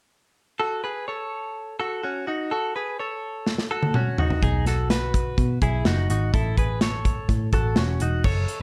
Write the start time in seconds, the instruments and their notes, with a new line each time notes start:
0.60 clean electric guitar F#4 A4
0.84 clean electric guitar G#4 B4
1.08 clean electric guitar A4 C#5
1.80 clean electric guitar F#4 A4
2.03 clean electric guitar C#4 F#4
2.27 clean electric guitar D#4 F#4
2.51 clean electric guitar F#4 A4
2.76 clean electric guitar G#4 B4
2.99 clean electric guitar A4 C#5
3.47 snare
3.58 snare
3.71 clean electric guitar F#4 A4
3.83 high tom
3.94 clean electric guitar C#4 F#4, mid tom
4.18 clean electric guitar D#4 F#4, floor tom
4.30 floor tom
4.42 picked electric bass B1, clean electric guitar D#4 G#4, kick, closed hi-hat
4.66 clean electric guitar F#4 A4, snare, closed hi-hat
4.90 clean electric guitar F#4 B4, snare, closed hi-hat
5.14 kick, closed hi-hat
5.38 picked electric bass B2, kick, closed hi-hat
5.62 picked electric bass B1, clean electric guitar E4 G#4, kick, closed hi-hat
5.85 picked electric bass F#1, clean electric guitar D#4 F#4, snare, closed hi-hat
6.10 picked electric bass G#1, clean electric guitar D#4 F#4, closed hi-hat
6.34 picked electric bass A1, clean electric guitar E4 A4, kick, closed hi-hat
6.57 clean electric guitar G#4 B4, kick, closed hi-hat
6.81 clean electric guitar A4 C#5, snare, closed hi-hat
7.05 kick, closed hi-hat
7.29 picked electric bass A2, kick, closed hi-hat
7.53 picked electric bass A1, clean electric guitar F#4 A4, kick, closed hi-hat
7.76 picked electric bass E1, clean electric guitar C#4 F#4, snare, closed hi-hat
8.00 picked electric bass E1, clean electric guitar D#4 F#4, closed hi-hat
8.24 picked electric bass F#1, clean electric guitar A4 C#5, kick, crash
8.48 closed hi-hat